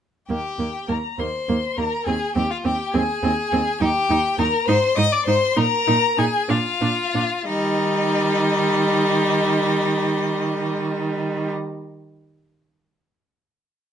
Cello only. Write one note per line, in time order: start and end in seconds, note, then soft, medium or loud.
0.30 0.38 D#2 soft
0.59 0.67 D#2 soft
0.89 0.97 D#2 soft
1.19 1.27 D#2 soft
1.49 1.57 D#2 soft
1.79 1.87 D#2 soft
2.07 2.15 D#2 medium
2.37 2.45 D#2 medium
2.66 2.74 D#2 medium
2.95 3.03 D#2 medium
3.24 3.32 D#2 medium
3.53 3.61 D#2 medium
3.81 3.89 D#2 medium
4.10 4.18 D#2 medium
4.39 4.47 D#2 medium
4.68 4.76 G#2 medium
4.97 5.05 G#2 medium
5.27 5.35 G#2 medium
5.57 5.65 A#2 medium
5.88 5.96 A#2 medium
6.18 6.26 A#2 medium
6.50 6.58 A#2 medium
6.82 6.90 A#2 medium
7.15 7.23 A#2 medium
7.48 11.49 D#3 medium